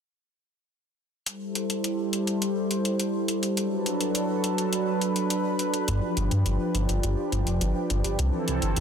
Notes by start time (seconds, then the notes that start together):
1.26 G3 E4 A4 C5, closed hi-hat
1.55 closed hi-hat
1.70 closed hi-hat
1.84 closed hi-hat
2.13 closed hi-hat
2.27 closed hi-hat
2.42 closed hi-hat
2.71 closed hi-hat
2.85 closed hi-hat
3.00 closed hi-hat
3.28 closed hi-hat
3.43 closed hi-hat
3.57 F#3 D4 A4 B4, closed hi-hat
3.86 closed hi-hat
4.01 closed hi-hat
4.15 closed hi-hat
4.44 closed hi-hat
4.58 closed hi-hat
4.73 closed hi-hat
5.01 closed hi-hat
5.16 closed hi-hat
5.30 closed hi-hat
5.59 closed hi-hat
5.74 closed hi-hat
5.88 G1 F3 G4, closed hi-hat
6.17 G1, closed hi-hat
6.31 G2, closed hi-hat
6.46 G1, closed hi-hat
6.75 G1, closed hi-hat
6.89 G1, closed hi-hat
7.03 G1, closed hi-hat
7.32 G1, closed hi-hat
7.47 F1, closed hi-hat
7.61 G1, closed hi-hat
7.90 G1, closed hi-hat
8.04 G1, closed hi-hat
8.19 C2 E3 C4 A4, closed hi-hat
8.48 C2, closed hi-hat
8.62 G1, closed hi-hat
8.76 C2, closed hi-hat